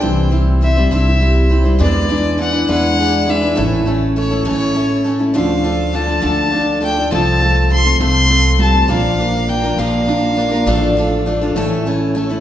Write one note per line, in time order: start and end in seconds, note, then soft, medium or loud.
0.00 0.88 C2 medium
0.00 0.32 C3 medium
0.00 0.32 E3 medium
0.00 1.80 E3 medium
0.00 0.29 G3 medium
0.00 0.30 C4 medium
0.00 5.30 E4 medium
0.00 0.31 E4 medium
0.00 0.31 C5 medium
0.00 1.78 C5 medium
0.00 0.34 G5 medium
0.00 1.79 G5 medium
0.31 0.60 G3 medium
0.31 0.61 C4 medium
0.31 0.62 E4 medium
0.31 0.92 E4 medium
0.31 0.62 C5 medium
0.61 0.76 G3 medium
0.61 0.76 C4 medium
0.61 1.81 C4 medium
0.61 0.76 E4 medium
0.61 0.75 C5 medium
0.61 0.90 E5 medium
0.76 0.90 G3 soft
0.76 0.91 C4 soft
0.76 0.91 E4 soft
0.76 0.91 C5 medium
0.91 1.76 C2 medium
0.91 1.21 C3 medium
0.91 1.21 E3 medium
0.91 1.19 G3 medium
0.91 1.20 C4 medium
0.91 1.06 D4 medium
0.91 1.21 E4 medium
0.91 1.21 C5 medium
0.91 1.55 E5 medium
1.07 1.49 E4 soft
1.20 1.49 G3 medium
1.20 1.50 C4 medium
1.20 1.50 E4 medium
1.20 1.87 G4 medium
1.20 1.51 C5 medium
1.50 1.65 G3 medium
1.50 1.64 C4 medium
1.50 1.86 E4 medium
1.50 1.64 E4 medium
1.50 1.63 C5 medium
1.64 1.79 G3 soft
1.64 1.79 C4 soft
1.64 1.79 E4 soft
1.64 1.80 C5 soft
1.79 2.65 E2 medium
1.79 2.09 E3 medium
1.79 2.08 G#3 medium
1.79 2.38 B3 medium
1.79 2.09 D4 medium
1.79 2.09 E4 medium
1.79 2.10 B4 medium
1.79 2.36 D5 medium
1.79 3.56 D5 medium
1.79 3.56 G#5 medium
2.09 2.36 G#3 medium
2.09 2.67 D4 medium
2.09 2.37 D4 medium
2.09 2.38 E4 medium
2.09 2.39 B4 medium
2.38 2.53 G#3 medium
2.38 3.64 B3 medium
2.38 2.53 D4 medium
2.38 2.52 E4 medium
2.38 2.51 B4 medium
2.38 2.67 F#5 medium
2.52 2.68 D4 soft
2.52 2.68 E4 soft
2.52 2.68 B4 medium
2.67 3.54 E2 medium
2.67 2.98 E3 medium
2.67 2.97 G#3 medium
2.67 3.27 D4 medium
2.67 2.97 D4 medium
2.67 2.98 E4 medium
2.67 2.99 B4 medium
2.67 3.31 F#5 loud
2.98 3.25 G#3 medium
2.98 3.26 D4 medium
2.98 3.27 E4 medium
2.98 3.64 G#4 medium
2.98 3.28 B4 medium
3.27 3.42 G#3 medium
3.27 3.43 D4 medium
3.27 3.64 D4 medium
3.27 3.41 E4 medium
3.27 3.40 B4 medium
3.27 3.88 E5 medium
3.41 3.57 D4 soft
3.41 3.56 E4 soft
3.41 3.57 B4 soft
3.56 4.43 A1 medium
3.56 3.86 A2 medium
3.56 3.86 E3 medium
3.56 5.35 E3 medium
3.56 3.84 A3 medium
3.56 3.86 C#4 medium
3.56 3.86 E4 medium
3.56 3.87 A4 medium
3.56 5.33 C#5 medium
3.56 8.85 A5 medium
3.86 4.15 A3 medium
3.86 4.16 C#4 medium
3.86 4.46 C#4 medium
3.86 4.16 E4 medium
3.86 4.17 A4 medium
4.16 4.31 A3 medium
4.16 5.41 A3 medium
4.16 4.31 C#4 medium
4.16 4.30 E4 medium
4.16 4.29 A4 medium
4.16 4.45 C#5 medium
4.30 4.44 A3 soft
4.30 4.44 C#4 medium
4.30 4.45 E4 soft
4.30 4.45 A4 medium
4.45 5.32 A1 medium
4.45 4.75 A2 medium
4.45 4.75 E3 medium
4.45 4.73 A3 medium
4.45 4.74 C#4 medium
4.45 5.05 C#4 medium
4.45 4.75 E4 medium
4.45 4.75 A4 medium
4.45 5.10 C#5 medium
4.74 5.03 A3 medium
4.74 5.03 C#4 medium
4.74 5.05 E4 medium
4.74 5.41 A4 medium
4.74 5.06 A4 medium
5.04 5.20 A3 medium
5.04 5.19 C#4 medium
5.04 5.41 C#4 medium
5.04 5.18 E4 medium
5.04 5.18 A4 medium
5.19 5.33 A3 soft
5.19 5.34 C#4 soft
5.19 5.35 E4 soft
5.19 5.34 A4 soft
5.34 6.20 D2 medium
5.34 5.64 D3 medium
5.34 5.94 F3 medium
5.34 5.63 A3 medium
5.34 5.63 D4 medium
5.34 5.64 F4 medium
5.34 11.52 F4 medium
5.34 5.64 A4 medium
5.34 7.11 D5 medium
5.34 5.96 F5 medium
5.64 5.92 A3 medium
5.64 6.23 A3 medium
5.64 5.93 D4 medium
5.64 5.93 F4 medium
5.64 5.95 A4 medium
5.93 7.11 F3 soft
5.93 6.08 A3 medium
5.93 6.08 D4 medium
5.93 6.07 F4 medium
5.93 6.06 A4 medium
5.93 6.24 A5 medium
6.07 6.21 D4 soft
6.07 6.22 F4 soft
6.07 6.22 A4 medium
6.21 7.09 D2 medium
6.21 6.52 D3 medium
6.21 6.49 A3 medium
6.21 6.81 A3 medium
6.21 6.51 D4 medium
6.21 6.51 F4 medium
6.21 6.52 A4 medium
6.21 6.79 A5 loud
6.51 6.79 A3 medium
6.51 6.80 D4 medium
6.51 7.18 D4 medium
6.51 6.82 F4 medium
6.51 6.82 A4 medium
6.80 6.96 A3 medium
6.80 7.18 A3 medium
6.80 6.97 D4 medium
6.80 6.97 F4 medium
6.80 6.95 A4 medium
6.80 7.11 G5 medium
6.97 7.12 D4 soft
6.97 7.11 F4 soft
6.97 7.11 A4 soft
7.11 7.97 C2 medium
7.11 7.41 C3 medium
7.11 7.41 F3 medium
7.11 7.69 F3 medium
7.11 7.39 A3 medium
7.11 7.40 C4 medium
7.11 7.40 F4 medium
7.11 7.41 A4 medium
7.11 8.88 C5 medium
7.11 7.67 A5 loud
7.40 7.68 A3 medium
7.40 7.99 A3 medium
7.40 7.69 C4 medium
7.40 7.69 F4 medium
7.40 7.70 A4 medium
7.69 8.87 F3 medium
7.69 7.85 A3 medium
7.69 7.85 C4 medium
7.69 7.84 F4 medium
7.69 7.83 A4 medium
7.69 8.00 C6 medium
7.84 7.99 A3 soft
7.84 8.00 C4 medium
7.84 8.00 F4 medium
7.84 8.00 A4 soft
8.00 8.85 C2 medium
8.00 8.30 C3 medium
8.00 8.30 F3 medium
8.00 8.60 A3 medium
8.00 8.28 A3 medium
8.00 8.29 C4 medium
8.00 8.29 F4 medium
8.00 8.30 A4 medium
8.00 8.57 C6 loud
8.29 8.57 A3 medium
8.29 8.95 C4 medium
8.29 8.58 C4 medium
8.29 8.59 F4 medium
8.29 8.60 A4 medium
8.58 8.73 G3 medium
8.58 8.74 A3 medium
8.58 8.74 C4 medium
8.58 8.73 F4 medium
8.58 8.72 A4 medium
8.58 8.91 A5 medium
8.73 8.95 A3 soft
8.73 8.88 A3 soft
8.73 8.89 C4 soft
8.73 8.88 F4 soft
8.73 8.89 A4 soft
8.88 9.74 A#1 medium
8.88 9.18 A#2 medium
8.88 9.18 F3 medium
8.88 9.47 F3 medium
8.88 9.17 A#3 medium
8.88 9.18 D4 medium
8.88 9.19 F4 medium
8.88 9.19 A#4 medium
8.88 11.52 D5 medium
8.88 9.51 F5 medium
8.88 10.65 A#5 medium
9.18 9.46 A#3 medium
9.18 9.76 A#3 medium
9.18 9.47 D4 medium
9.18 9.48 F4 medium
9.18 9.49 A#4 medium
9.47 10.65 F3 medium
9.47 9.63 A#3 medium
9.47 9.63 D4 medium
9.47 9.63 F4 medium
9.47 9.62 A#4 medium
9.47 9.80 G5 medium
9.63 9.78 A#3 soft
9.63 9.78 D4 soft
9.63 9.78 F4 medium
9.63 9.78 A#4 medium
9.77 10.62 A#1 medium
9.77 10.08 A#2 medium
9.77 10.08 F3 medium
9.77 10.35 A#3 medium
9.77 10.06 A#3 medium
9.77 10.06 D4 medium
9.77 10.07 F4 medium
9.77 10.08 A#4 medium
9.77 11.56 F5 medium
10.07 10.36 A#3 medium
10.07 10.73 D4 medium
10.07 10.36 D4 medium
10.07 10.37 F4 medium
10.07 10.38 A#4 medium
10.36 10.72 A#3 medium
10.36 10.52 A#3 medium
10.36 10.52 D4 medium
10.36 10.51 F4 medium
10.36 10.50 A#4 medium
10.51 10.67 A#3 soft
10.51 10.66 D4 soft
10.51 10.67 F4 soft
10.51 10.67 A#4 medium
10.66 11.51 A1 medium
10.66 10.96 A2 medium
10.66 10.97 D3 medium
10.66 11.24 F3 medium
10.66 10.96 A3 medium
10.66 10.97 D4 medium
10.66 10.97 F4 medium
10.66 10.97 A4 medium
10.66 11.54 A5 medium
10.96 11.62 A3 medium
10.96 11.25 A3 medium
10.96 11.26 D4 medium
10.96 11.26 F4 medium
10.96 11.28 A4 medium
11.26 11.56 F3 medium
11.26 11.41 A3 medium
11.26 11.41 D4 medium
11.26 11.42 F4 medium
11.26 11.40 A4 medium
11.41 11.55 A3 medium
11.41 11.57 D4 medium
11.41 11.57 F4 medium
11.41 11.56 A4 medium
11.55 12.40 A1 medium
11.55 11.85 A2 medium
11.55 12.40 E3 medium
11.55 11.86 E3 medium
11.55 11.85 A3 medium
11.55 11.86 C#4 medium
11.55 12.40 E4 medium
11.55 11.86 E4 medium
11.55 11.86 A4 medium
11.55 12.40 C#5 medium
11.55 12.40 A5 medium
11.85 12.14 A3 medium
11.85 12.40 C#4 medium
11.85 12.15 C#4 medium
11.85 12.15 E4 medium
11.89 12.17 A4 medium
12.15 12.40 A3 medium
12.15 12.30 A3 medium
12.15 12.30 C#4 medium
12.15 12.29 E4 medium
12.15 12.28 A4 medium
12.29 12.40 A3 soft
12.29 12.40 C#4 soft
12.29 12.40 E4 soft
12.29 12.40 A4 medium